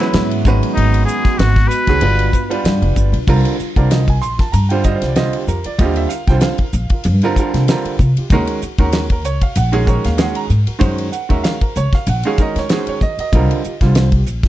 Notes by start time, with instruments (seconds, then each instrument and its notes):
Already playing: ambient pad F#3 B3 E5, muted trumpet E4
0.00 grand piano E3 G#3 C#4 F#4 B4, snare, ride
0.13 upright bass G#2, snare, ride
0.31 ride
0.44 upright bass G#1, grand piano D#3 G#3 C#4 F#4 B4, ambient pad G#3 F#4, kick, hi-hat pedal
0.63 ride
0.72 muted trumpet D#4
0.77 upright bass G#1, ride
0.94 ride
1.05 muted trumpet G#4, hi-hat pedal
1.25 kick, snare, ride
1.38 upright bass G#1, muted trumpet F#4, snare, ride
1.56 kick, snare, ride
1.68 muted trumpet B4, hi-hat pedal
1.87 upright bass C#2, grand piano D#3 G#3 C#4 F#4 G#4, kick, snare, ride
2.01 upright bass G1, grand piano G3 B3 D4 F4 B4, ambient pad G3 D4 F4 B4, ride
2.19 ride
2.33 grand piano F4 B4, kick, hi-hat pedal
2.50 grand piano G3 B3 D4 F4 B4, ride
2.64 upright bass G2, snare, ride
2.82 upright bass F1, ride
2.96 upright bass G1, kick, hi-hat pedal
3.12 upright bass B1, ride
3.27 upright bass C2, grand piano D3 G3 C4 F4 A#4, kick, crash
3.45 ride
3.59 grand piano F4 A#4, muted upright bass stroke, hi-hat pedal
3.76 upright bass C2, grand piano D3 G3 C4 F4 A#4 D5, kick, ride
3.90 grand piano D#5, snare, hi-hat pedal, ride
4.07 grand piano F4 A#4 G#5, kick, ride
4.22 upright bass A#1, grand piano C6, hi-hat pedal
4.38 grand piano F4 A#4 A5, kick, snare, ride
4.52 upright bass G2, grand piano A#5, hi-hat pedal, ride
4.69 grand piano D3 G3 C4 F4 C5 G5, ride
4.84 grand piano D3 G3 C4 F4 C5 D#5, kick, hi-hat pedal
4.96 grand piano C5
5.02 upright bass C2, snare, ride
5.07 grand piano D5
5.16 grand piano D3 G3 C4 F4 C5 D#5, snare, hi-hat pedal, ride
5.33 grand piano G4, ride
5.47 upright bass F2, grand piano F4 G4 A#4, hi-hat pedal
5.64 grand piano F4 A#4 D5, muted upright bass stroke, ride
5.78 upright bass D#2, grand piano D3 G3 C4 F4 G4 D#5, kick, hi-hat pedal, ride
5.96 grand piano E5, ride
6.09 grand piano F4 A#4 F5, hi-hat pedal
6.27 upright bass C2, grand piano D3 G3 C4 F4 C5 G5, kick, snare, ride
6.41 grand piano F5, snare, hi-hat pedal, ride
6.58 grand piano F4, muted upright bass stroke, kick, ride
6.63 grand piano A#4
6.73 upright bass A#1, hi-hat pedal
6.90 grand piano F4 A#4, muted upright bass stroke, kick, ride
7.04 upright bass G2, hi-hat pedal, ride
7.22 grand piano D3 G3 C4 F4 A#4, ride
7.36 grand piano D3 G3 C4 F4 A#4, kick, hi-hat pedal
7.54 upright bass C3, snare, ride
7.68 grand piano D3 G3 C4 F4 A#4, snare, hi-hat pedal, ride
7.85 muted upright bass stroke, ride
7.99 upright bass C3, grand piano F4 A#4, kick, hi-hat pedal
8.17 grand piano F4 G4, muted upright bass stroke, ride
8.30 upright bass D#2, grand piano D#3 G#3 C#4 F#4 A#4, kick, hi-hat pedal, ride
8.47 ride
8.62 grand piano F#4 A#4, muted upright bass stroke, hi-hat pedal
8.78 upright bass D#2, grand piano D#3 G#3 C#4 F#4 A#4, kick, ride
8.92 snare, hi-hat pedal, ride
9.10 grand piano F#4 A#4 C#5, kick, ride
9.24 upright bass C#2, grand piano C#5, hi-hat pedal
9.41 grand piano F#4 C#5 F5, kick, ride
9.55 upright bass A#1, grand piano F#5, hi-hat pedal, ride
9.72 grand piano D#3 G#3 C#4 F#4 G#4 A#4, ride
9.86 grand piano D#3 G#3 C#4 F#4 A#4 C#5, kick, hi-hat pedal
10.04 upright bass D#2, grand piano F5, snare, ride
10.18 grand piano D#3 G#3 C#4 F#4 G#4 F#5, snare, hi-hat pedal, ride
10.35 grand piano A#5, ride
10.49 upright bass G#2, grand piano F#4 A#4, hi-hat pedal
10.67 grand piano F#4 A#4, muted upright bass stroke, ride
10.79 upright bass F#2, grand piano D#3 G#3 C#4 F#4 C5, kick, hi-hat pedal, ride
10.98 ride
11.12 grand piano F#4 A#4 F#5, hi-hat pedal
11.29 upright bass D#2, grand piano D#3 G#3 C#4 F#4 A#4 E5, kick, ride
11.44 grand piano F5, snare, hi-hat pedal, ride
11.61 grand piano F#4 A#4 C5, muted upright bass stroke, kick, ride
11.76 upright bass C#2, grand piano C#5, hi-hat pedal
11.92 grand piano F#4 A#4 F5, muted upright bass stroke, kick, snare, ride
12.07 upright bass A#1, grand piano F#5, hi-hat pedal, ride
12.23 grand piano D#3 G#3 C#4 F#4 G#4 F5, ride
12.38 grand piano D#3 G#3 C#4 F#4 A#4 D#5, muted upright bass stroke, kick, hi-hat pedal
12.56 upright bass D#3, grand piano C#5, snare, ride
12.69 grand piano D#3 G#3 C#4 F#4 G#4 C5, snare, hi-hat pedal, ride
12.87 grand piano C#5, muted upright bass stroke, ride
13.01 upright bass D#3, grand piano F#4 A#4 D#5, kick, hi-hat pedal
13.17 grand piano F#4 A#4 D#5, muted upright bass stroke, ride
13.32 upright bass C2, grand piano D3 G3 C4 F4 A#4, kick, hi-hat pedal, ride
13.51 ride
13.64 grand piano F4 G4, muted upright bass stroke, hi-hat pedal
13.81 upright bass C2, grand piano D3 G3 C4 F4 C5, kick, snare, ride
13.95 snare, hi-hat pedal, ride
14.12 grand piano F4 G4, kick, ride
14.26 upright bass A#1, hi-hat pedal
14.43 kick, snare, ride